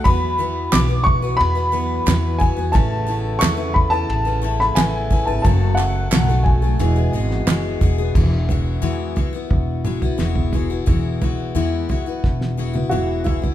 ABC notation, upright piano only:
X:1
M:4/4
L:1/16
Q:1/4=89
K:Emix
V:1 name="Upright piano"
b4 d'2 c'2 b6 g2 | a4 c'2 b a4 b g3 a | a2 f4 g8 z2 | z16 |
z12 F2 E2 |]